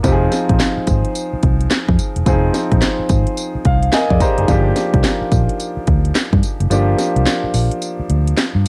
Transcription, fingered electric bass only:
0.04 0.27 F1 loud
0.49 0.58 A#1 medium
0.77 muted fingered electric bass stroke soft
0.87 1.02 G#1 medium
1.33 muted fingered electric bass stroke soft
1.43 1.66 C2 medium
1.89 1.97 F2 loud
2.16 2.24 E1 medium
2.26 2.49 F1 loud
2.72 2.80 A#1 medium
2.99 muted fingered electric bass stroke soft
3.10 3.24 G#1 medium
3.55 muted fingered electric bass stroke medium
3.65 3.88 C2 medium
4.11 4.19 F2 medium
4.38 4.47 F#1 medium
4.48 4.71 G1 loud
4.94 5.02 C2 loud
5.21 muted fingered electric bass stroke soft
5.32 5.46 A#1 loud
5.77 muted fingered electric bass stroke soft
5.88 6.10 D2 medium
6.33 6.41 G2 loud
6.60 6.69 F#1 medium
6.70 6.93 G1 loud
7.16 7.24 C2 medium
7.44 muted fingered electric bass stroke soft
7.54 7.68 A#1 loud
8.00 muted fingered electric bass stroke medium
8.10 8.32 D2 medium
8.55 8.63 G2 medium

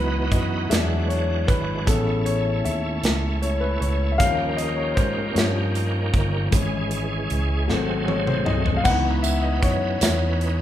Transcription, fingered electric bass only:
0.00 0.28 C#2 medium
0.32 0.67 F#2 medium
0.71 1.44 E2 medium
1.48 1.84 G#1 medium
1.87 2.61 A1 medium
2.65 3.01 D#2 medium
3.03 3.77 C#2 medium
3.81 4.17 C#2 medium
4.20 4.93 D#2 medium
4.97 5.33 G#2 medium
5.35 6.09 G2 medium
6.14 6.50 G1 medium
6.52 7.26 G#1 medium
7.30 7.66 C#2 medium
7.69 8.43 G#1 medium
8.47 8.82 C2 medium
8.85 9.59 C#2 medium
9.63 9.99 F#2 medium
10.01 10.62 E2 medium

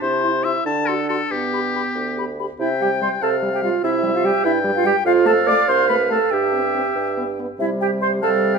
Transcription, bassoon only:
0.02 0.55 C3 medium
0.65 1.20 D3 medium
1.30 1.85 G2 medium
1.95 2.49 D2 soft
2.59 3.12 C3 medium
3.21 3.73 C3 medium
3.83 4.34 C3 medium
4.44 4.95 G2 medium
5.05 5.57 F2 medium
5.68 6.21 C2 medium
6.31 6.85 G2 medium
6.96 7.49 G2 medium
7.59 8.59 C3 medium

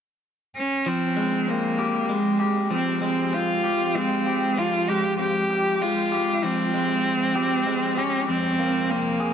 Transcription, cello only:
0.56 0.89 C#4 soft
0.88 1.52 C4 soft
1.50 2.13 A#3 medium
2.11 2.73 G#3 soft
2.73 3.01 C4 medium
3.04 3.36 C4 soft
3.34 3.97 F4 medium
3.96 4.60 C4 medium
4.58 4.90 F4 medium
4.89 5.19 G4 medium
5.20 5.83 G4 medium
5.82 6.46 F4 medium
6.44 8.00 C4 medium
7.98 8.28 C#4 medium
8.29 8.92 C4 medium
8.91 9.34 A#3 medium

